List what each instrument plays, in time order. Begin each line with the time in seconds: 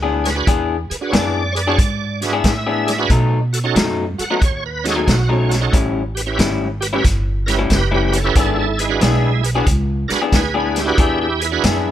Already playing: upright bass D2
0.03 clean electric guitar E3 B3 D4 G#4
0.24 tonewheel organ G#4 B4 C#5, snare, closed hi-hat
0.35 tonewheel organ D4 F#4 G#4 B4, muted clean electric guitar stroke
0.47 upright bass E2, clean electric guitar E3 B3 D4 G#4, kick, closed hi-hat
0.90 tonewheel organ G#4 B4, muted upright bass stroke, closed hi-hat
1.01 tonewheel organ D4 F#4 G#4 B4
1.10 upright bass F#2, clean electric guitar E3 B3 D4 G#4, tonewheel organ C#5, closed hi-hat
1.14 tonewheel organ D5, snare
1.52 tonewheel organ G#4 C#5, closed hi-hat
1.57 tonewheel organ B4 D5
1.67 clean electric guitar E3 B3 D4 G#4, tonewheel organ D4 F#4 G#4 C#5
1.78 upright bass G#2, muted clean electric guitar stroke, kick, closed hi-hat
2.21 tonewheel organ D4 F#4 G#4 B4 E5, snare, closed hi-hat
2.33 clean electric guitar E3 B3 D4 G#4
2.44 upright bass A2, kick, snare, closed hi-hat
2.66 clean electric guitar E3 B3 D4 G#4
2.87 tonewheel organ G#4 D5, snare, closed hi-hat
2.98 tonewheel organ D4 F#4 G#4 B4, muted clean electric guitar stroke
3.10 upright bass B2, clean electric guitar B2 F#3 A3 D#4, kick, closed hi-hat
3.53 tonewheel organ F#4 A4, closed hi-hat
3.64 tonewheel organ C#4 D#4 F#4 A4
3.76 upright bass F#2, clean electric guitar B2 F#3 A3 D#4, snare, closed hi-hat
4.18 tonewheel organ F#4 A4 F#5, muted upright bass stroke, closed hi-hat
4.30 clean electric guitar B2 F#3 A3 D#4, tonewheel organ C#4 D#4 F#4 B4
4.41 upright bass D#2, tonewheel organ C#5, muted clean electric guitar stroke, kick, closed hi-hat
4.66 tonewheel organ B4
4.84 tonewheel organ C#4 D#4 F#4 G#4 A4, snare, closed hi-hat
4.96 clean electric guitar B2 F#3 A3 D#4
5.08 upright bass B1, tonewheel organ F#4, kick, snare, closed hi-hat
5.29 clean electric guitar B2 F#3 A3 D#4, tonewheel organ C#4
5.49 tonewheel organ F#4 A4, snare, closed hi-hat
5.54 tonewheel organ C#4
5.61 tonewheel organ C#4 D#4 F#4 A4, muted clean electric guitar stroke
5.72 upright bass A1, clean electric guitar A2 G3 C#4 E4, kick, closed hi-hat
6.15 tonewheel organ G4 B4, closed hi-hat
6.26 tonewheel organ C#4 E4 G4 B4
6.39 upright bass G#1, clean electric guitar A2 G3 C#4 E4, snare, closed hi-hat
6.81 tonewheel organ G4 B4, closed hi-hat
6.93 clean electric guitar A2 G3 C#4 E4, tonewheel organ C#4 E4 G4 B4
7.04 upright bass G1, muted clean electric guitar stroke, kick, snare, closed hi-hat
7.46 tonewheel organ C#4 E4 G4 A#4 B4, snare, closed hi-hat
7.58 clean electric guitar A2 G3 C#4 E4
7.70 upright bass F#1, tonewheel organ G4 B4, kick, snare, closed hi-hat
7.91 clean electric guitar A2 G3 C#4 E4, tonewheel organ G4 B4
8.12 tonewheel organ C#4 G4 B4, closed hi-hat
8.17 tonewheel organ A4
8.24 tonewheel organ C#4 E4 G4 B4, muted clean electric guitar stroke
8.35 upright bass G#1, clean electric guitar E3 B3 D4 G#4, tonewheel organ E4 A4, kick, closed hi-hat
8.59 tonewheel organ E4 A4
8.78 tonewheel organ G#3 E4 G#4 B4, closed hi-hat
8.89 tonewheel organ D4 F#4 G#4 B4
9.01 upright bass B1, clean electric guitar E3 B3 D4 G#4, snare, closed hi-hat
9.43 tonewheel organ G#4 B4, closed hi-hat
9.55 clean electric guitar E3 B3 D4 G#4, tonewheel organ D4 F#4 G#4 B4
9.66 upright bass C#2, muted clean electric guitar stroke, kick, closed hi-hat
10.08 tonewheel organ D4 F#4 G#4 A#4 B4, muted upright bass stroke, snare, closed hi-hat
10.22 clean electric guitar E3 B3 D4 G#4
10.32 upright bass D2, tonewheel organ G#4 B4, kick, snare, closed hi-hat
10.54 clean electric guitar E3 B3 D4 G#4, tonewheel organ G#4 B4
10.75 tonewheel organ E4 G4 G#4 B4, snare, closed hi-hat
10.86 tonewheel organ D4 F#4 G#4 B4, muted clean electric guitar stroke
10.98 upright bass E2, clean electric guitar E3 B3 D4 G#4, tonewheel organ E4 G4, kick, closed hi-hat
11.21 tonewheel organ E4 G4
11.40 tonewheel organ G#4 B4, closed hi-hat
11.44 tonewheel organ E4
11.51 tonewheel organ D4 F#4 G#4 B4
11.64 upright bass F#2, clean electric guitar E3 B3 D4 G#4, snare, closed hi-hat